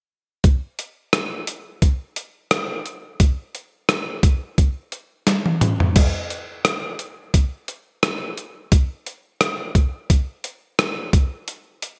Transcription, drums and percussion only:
0, 0, Header, 1, 2, 480
1, 0, Start_track
1, 0, Tempo, 689655
1, 308, Time_signature, 4, 2, 24, 8
1, 8346, End_track
2, 0, Start_track
2, 0, Title_t, "Drums"
2, 306, Note_on_c, 9, 42, 76
2, 307, Note_on_c, 9, 36, 99
2, 375, Note_off_c, 9, 42, 0
2, 376, Note_off_c, 9, 36, 0
2, 548, Note_on_c, 9, 42, 57
2, 618, Note_off_c, 9, 42, 0
2, 786, Note_on_c, 9, 37, 94
2, 787, Note_on_c, 9, 42, 75
2, 856, Note_off_c, 9, 37, 0
2, 856, Note_off_c, 9, 42, 0
2, 1025, Note_on_c, 9, 42, 71
2, 1095, Note_off_c, 9, 42, 0
2, 1267, Note_on_c, 9, 36, 73
2, 1267, Note_on_c, 9, 42, 76
2, 1337, Note_off_c, 9, 36, 0
2, 1337, Note_off_c, 9, 42, 0
2, 1506, Note_on_c, 9, 42, 68
2, 1575, Note_off_c, 9, 42, 0
2, 1746, Note_on_c, 9, 42, 78
2, 1747, Note_on_c, 9, 37, 98
2, 1816, Note_off_c, 9, 42, 0
2, 1817, Note_off_c, 9, 37, 0
2, 1988, Note_on_c, 9, 42, 67
2, 2057, Note_off_c, 9, 42, 0
2, 2226, Note_on_c, 9, 42, 80
2, 2227, Note_on_c, 9, 36, 98
2, 2296, Note_off_c, 9, 42, 0
2, 2297, Note_off_c, 9, 36, 0
2, 2468, Note_on_c, 9, 42, 57
2, 2538, Note_off_c, 9, 42, 0
2, 2706, Note_on_c, 9, 37, 90
2, 2707, Note_on_c, 9, 42, 76
2, 2775, Note_off_c, 9, 37, 0
2, 2776, Note_off_c, 9, 42, 0
2, 2945, Note_on_c, 9, 36, 91
2, 2945, Note_on_c, 9, 42, 72
2, 3015, Note_off_c, 9, 36, 0
2, 3015, Note_off_c, 9, 42, 0
2, 3188, Note_on_c, 9, 36, 75
2, 3188, Note_on_c, 9, 42, 73
2, 3257, Note_off_c, 9, 42, 0
2, 3258, Note_off_c, 9, 36, 0
2, 3425, Note_on_c, 9, 42, 69
2, 3495, Note_off_c, 9, 42, 0
2, 3666, Note_on_c, 9, 38, 49
2, 3666, Note_on_c, 9, 42, 82
2, 3736, Note_off_c, 9, 38, 0
2, 3736, Note_off_c, 9, 42, 0
2, 3798, Note_on_c, 9, 48, 50
2, 3867, Note_off_c, 9, 48, 0
2, 3907, Note_on_c, 9, 42, 69
2, 3907, Note_on_c, 9, 45, 74
2, 3976, Note_off_c, 9, 45, 0
2, 3977, Note_off_c, 9, 42, 0
2, 4038, Note_on_c, 9, 43, 75
2, 4108, Note_off_c, 9, 43, 0
2, 4146, Note_on_c, 9, 42, 81
2, 4146, Note_on_c, 9, 49, 79
2, 4147, Note_on_c, 9, 36, 106
2, 4216, Note_off_c, 9, 42, 0
2, 4216, Note_off_c, 9, 49, 0
2, 4217, Note_off_c, 9, 36, 0
2, 4388, Note_on_c, 9, 42, 66
2, 4457, Note_off_c, 9, 42, 0
2, 4627, Note_on_c, 9, 37, 91
2, 4627, Note_on_c, 9, 42, 80
2, 4696, Note_off_c, 9, 37, 0
2, 4697, Note_off_c, 9, 42, 0
2, 4865, Note_on_c, 9, 42, 74
2, 4935, Note_off_c, 9, 42, 0
2, 5108, Note_on_c, 9, 36, 74
2, 5108, Note_on_c, 9, 42, 77
2, 5178, Note_off_c, 9, 36, 0
2, 5178, Note_off_c, 9, 42, 0
2, 5346, Note_on_c, 9, 42, 74
2, 5416, Note_off_c, 9, 42, 0
2, 5588, Note_on_c, 9, 37, 100
2, 5588, Note_on_c, 9, 42, 85
2, 5657, Note_off_c, 9, 42, 0
2, 5658, Note_off_c, 9, 37, 0
2, 5829, Note_on_c, 9, 42, 72
2, 5899, Note_off_c, 9, 42, 0
2, 6068, Note_on_c, 9, 36, 106
2, 6068, Note_on_c, 9, 42, 85
2, 6137, Note_off_c, 9, 42, 0
2, 6138, Note_off_c, 9, 36, 0
2, 6309, Note_on_c, 9, 42, 62
2, 6379, Note_off_c, 9, 42, 0
2, 6547, Note_on_c, 9, 37, 90
2, 6548, Note_on_c, 9, 42, 76
2, 6617, Note_off_c, 9, 37, 0
2, 6618, Note_off_c, 9, 42, 0
2, 6786, Note_on_c, 9, 36, 91
2, 6787, Note_on_c, 9, 42, 78
2, 6856, Note_off_c, 9, 36, 0
2, 6857, Note_off_c, 9, 42, 0
2, 7029, Note_on_c, 9, 36, 78
2, 7029, Note_on_c, 9, 42, 79
2, 7099, Note_off_c, 9, 36, 0
2, 7099, Note_off_c, 9, 42, 0
2, 7266, Note_on_c, 9, 42, 72
2, 7336, Note_off_c, 9, 42, 0
2, 7508, Note_on_c, 9, 42, 81
2, 7509, Note_on_c, 9, 37, 106
2, 7578, Note_off_c, 9, 37, 0
2, 7578, Note_off_c, 9, 42, 0
2, 7748, Note_on_c, 9, 36, 101
2, 7748, Note_on_c, 9, 42, 73
2, 7818, Note_off_c, 9, 36, 0
2, 7818, Note_off_c, 9, 42, 0
2, 7988, Note_on_c, 9, 42, 86
2, 8057, Note_off_c, 9, 42, 0
2, 8230, Note_on_c, 9, 42, 66
2, 8299, Note_off_c, 9, 42, 0
2, 8346, End_track
0, 0, End_of_file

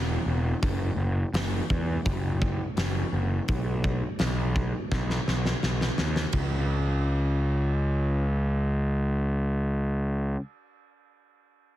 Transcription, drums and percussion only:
0, 0, Header, 1, 2, 480
1, 0, Start_track
1, 0, Key_signature, 4, "minor"
1, 0, Tempo, 712589
1, 424, Time_signature, 4, 2, 24, 8
1, 7927, End_track
2, 0, Start_track
2, 0, Title_t, "Drums"
2, 422, Note_on_c, 9, 36, 95
2, 423, Note_on_c, 9, 46, 45
2, 490, Note_off_c, 9, 36, 0
2, 490, Note_off_c, 9, 46, 0
2, 904, Note_on_c, 9, 46, 43
2, 910, Note_on_c, 9, 38, 91
2, 972, Note_off_c, 9, 46, 0
2, 977, Note_off_c, 9, 38, 0
2, 1146, Note_on_c, 9, 36, 78
2, 1213, Note_off_c, 9, 36, 0
2, 1385, Note_on_c, 9, 46, 43
2, 1387, Note_on_c, 9, 36, 97
2, 1452, Note_off_c, 9, 46, 0
2, 1454, Note_off_c, 9, 36, 0
2, 1628, Note_on_c, 9, 36, 77
2, 1695, Note_off_c, 9, 36, 0
2, 1866, Note_on_c, 9, 46, 46
2, 1871, Note_on_c, 9, 38, 95
2, 1933, Note_off_c, 9, 46, 0
2, 1938, Note_off_c, 9, 38, 0
2, 2345, Note_on_c, 9, 46, 43
2, 2349, Note_on_c, 9, 36, 91
2, 2412, Note_off_c, 9, 46, 0
2, 2416, Note_off_c, 9, 36, 0
2, 2588, Note_on_c, 9, 36, 66
2, 2655, Note_off_c, 9, 36, 0
2, 2821, Note_on_c, 9, 46, 41
2, 2827, Note_on_c, 9, 38, 89
2, 2889, Note_off_c, 9, 46, 0
2, 2894, Note_off_c, 9, 38, 0
2, 3070, Note_on_c, 9, 36, 69
2, 3137, Note_off_c, 9, 36, 0
2, 3311, Note_on_c, 9, 36, 90
2, 3317, Note_on_c, 9, 38, 43
2, 3379, Note_off_c, 9, 36, 0
2, 3384, Note_off_c, 9, 38, 0
2, 3436, Note_on_c, 9, 38, 41
2, 3503, Note_off_c, 9, 38, 0
2, 3555, Note_on_c, 9, 38, 56
2, 3622, Note_off_c, 9, 38, 0
2, 3674, Note_on_c, 9, 38, 53
2, 3742, Note_off_c, 9, 38, 0
2, 3792, Note_on_c, 9, 38, 67
2, 3860, Note_off_c, 9, 38, 0
2, 3915, Note_on_c, 9, 38, 62
2, 3983, Note_off_c, 9, 38, 0
2, 4028, Note_on_c, 9, 38, 73
2, 4096, Note_off_c, 9, 38, 0
2, 4150, Note_on_c, 9, 38, 71
2, 4217, Note_off_c, 9, 38, 0
2, 4261, Note_on_c, 9, 51, 69
2, 4265, Note_on_c, 9, 36, 59
2, 4329, Note_off_c, 9, 51, 0
2, 4333, Note_off_c, 9, 36, 0
2, 7927, End_track
0, 0, End_of_file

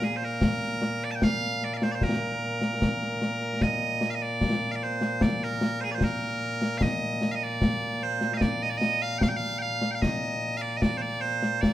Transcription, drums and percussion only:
0, 0, Header, 1, 2, 480
1, 0, Start_track
1, 0, Key_signature, -2, "major"
1, 0, Tempo, 800000
1, 249, Time_signature, 2, 2, 24, 8
1, 7039, End_track
2, 0, Start_track
2, 0, Title_t, "Drums"
2, 11, Note_on_c, 9, 38, 78
2, 71, Note_off_c, 9, 38, 0
2, 131, Note_on_c, 9, 38, 31
2, 191, Note_off_c, 9, 38, 0
2, 248, Note_on_c, 9, 35, 74
2, 248, Note_on_c, 9, 38, 106
2, 308, Note_off_c, 9, 35, 0
2, 308, Note_off_c, 9, 38, 0
2, 490, Note_on_c, 9, 38, 79
2, 550, Note_off_c, 9, 38, 0
2, 731, Note_on_c, 9, 35, 59
2, 731, Note_on_c, 9, 38, 113
2, 791, Note_off_c, 9, 35, 0
2, 791, Note_off_c, 9, 38, 0
2, 972, Note_on_c, 9, 38, 33
2, 1032, Note_off_c, 9, 38, 0
2, 1091, Note_on_c, 9, 38, 81
2, 1151, Note_off_c, 9, 38, 0
2, 1208, Note_on_c, 9, 35, 66
2, 1208, Note_on_c, 9, 38, 101
2, 1268, Note_off_c, 9, 35, 0
2, 1268, Note_off_c, 9, 38, 0
2, 1569, Note_on_c, 9, 38, 71
2, 1629, Note_off_c, 9, 38, 0
2, 1691, Note_on_c, 9, 35, 61
2, 1691, Note_on_c, 9, 38, 94
2, 1751, Note_off_c, 9, 35, 0
2, 1751, Note_off_c, 9, 38, 0
2, 1809, Note_on_c, 9, 38, 28
2, 1869, Note_off_c, 9, 38, 0
2, 1930, Note_on_c, 9, 38, 76
2, 1990, Note_off_c, 9, 38, 0
2, 2049, Note_on_c, 9, 38, 25
2, 2109, Note_off_c, 9, 38, 0
2, 2168, Note_on_c, 9, 35, 59
2, 2168, Note_on_c, 9, 38, 93
2, 2228, Note_off_c, 9, 35, 0
2, 2228, Note_off_c, 9, 38, 0
2, 2407, Note_on_c, 9, 38, 78
2, 2467, Note_off_c, 9, 38, 0
2, 2647, Note_on_c, 9, 35, 58
2, 2647, Note_on_c, 9, 38, 93
2, 2707, Note_off_c, 9, 35, 0
2, 2707, Note_off_c, 9, 38, 0
2, 3008, Note_on_c, 9, 38, 72
2, 3068, Note_off_c, 9, 38, 0
2, 3127, Note_on_c, 9, 35, 72
2, 3127, Note_on_c, 9, 38, 113
2, 3187, Note_off_c, 9, 35, 0
2, 3187, Note_off_c, 9, 38, 0
2, 3368, Note_on_c, 9, 38, 93
2, 3428, Note_off_c, 9, 38, 0
2, 3605, Note_on_c, 9, 35, 61
2, 3605, Note_on_c, 9, 38, 105
2, 3665, Note_off_c, 9, 35, 0
2, 3665, Note_off_c, 9, 38, 0
2, 3970, Note_on_c, 9, 38, 73
2, 4030, Note_off_c, 9, 38, 0
2, 4085, Note_on_c, 9, 35, 69
2, 4085, Note_on_c, 9, 38, 111
2, 4145, Note_off_c, 9, 35, 0
2, 4145, Note_off_c, 9, 38, 0
2, 4329, Note_on_c, 9, 38, 80
2, 4389, Note_off_c, 9, 38, 0
2, 4569, Note_on_c, 9, 35, 62
2, 4569, Note_on_c, 9, 38, 96
2, 4629, Note_off_c, 9, 35, 0
2, 4629, Note_off_c, 9, 38, 0
2, 4927, Note_on_c, 9, 38, 66
2, 4987, Note_off_c, 9, 38, 0
2, 5046, Note_on_c, 9, 35, 63
2, 5046, Note_on_c, 9, 38, 111
2, 5106, Note_off_c, 9, 35, 0
2, 5106, Note_off_c, 9, 38, 0
2, 5289, Note_on_c, 9, 38, 82
2, 5349, Note_off_c, 9, 38, 0
2, 5528, Note_on_c, 9, 35, 61
2, 5528, Note_on_c, 9, 38, 100
2, 5588, Note_off_c, 9, 35, 0
2, 5588, Note_off_c, 9, 38, 0
2, 5889, Note_on_c, 9, 38, 76
2, 5949, Note_off_c, 9, 38, 0
2, 6013, Note_on_c, 9, 35, 66
2, 6013, Note_on_c, 9, 38, 94
2, 6073, Note_off_c, 9, 35, 0
2, 6073, Note_off_c, 9, 38, 0
2, 6492, Note_on_c, 9, 35, 57
2, 6492, Note_on_c, 9, 38, 96
2, 6552, Note_off_c, 9, 35, 0
2, 6552, Note_off_c, 9, 38, 0
2, 6855, Note_on_c, 9, 38, 65
2, 6915, Note_off_c, 9, 38, 0
2, 6976, Note_on_c, 9, 35, 53
2, 6976, Note_on_c, 9, 38, 95
2, 7036, Note_off_c, 9, 35, 0
2, 7036, Note_off_c, 9, 38, 0
2, 7039, End_track
0, 0, End_of_file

